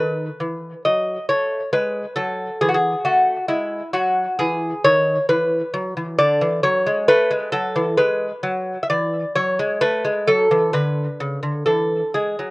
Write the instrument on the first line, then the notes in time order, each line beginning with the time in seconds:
lute
Already playing: D#3 B4
0.40 E3
0.85 F#3 D#5
1.29 A3 C#5
1.73 G#3 B4
2.16 F#3 A4
2.61 E3 G#4
2.69 F#4
2.74 G#4
3.05 A3 F#4
3.48 G#3 E4
3.93 F#3 F#4
4.39 E3 G#4
4.84 D#3 C#5
5.29 E3 B4
5.74 F#3
5.97 E3
6.18 D3 D5
6.41 E3
6.63 F#3 C#5
6.87 G#3
7.08 A3 B4
7.31 G#3
7.52 F#3 A4
7.76 E3
7.97 G#3 B4
8.43 F#3
8.83 E5
8.90 E3 D5
9.35 F#3 C#5
9.59 G#3
9.81 A3 B4
10.05 G#3
10.27 F#3 A4
10.51 E3
10.73 D3 B4
11.20 C#3
11.43 D3
11.66 E3 A4
12.14 G#3 G#4
12.39 F#3